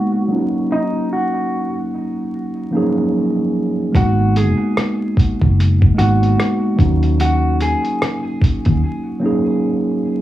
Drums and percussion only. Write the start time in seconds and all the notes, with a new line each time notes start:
3.95 kick, closed hi-hat
4.36 closed hi-hat
4.77 cross-stick, closed hi-hat
5.17 kick, closed hi-hat
5.42 kick
5.60 closed hi-hat
5.82 kick
5.99 closed hi-hat
6.23 closed hi-hat
6.39 cross-stick, closed hi-hat
6.79 kick, closed hi-hat
7.03 closed hi-hat
7.20 closed hi-hat
7.60 closed hi-hat
7.85 closed hi-hat
8.02 cross-stick, closed hi-hat
8.41 kick, closed hi-hat
8.65 kick, closed hi-hat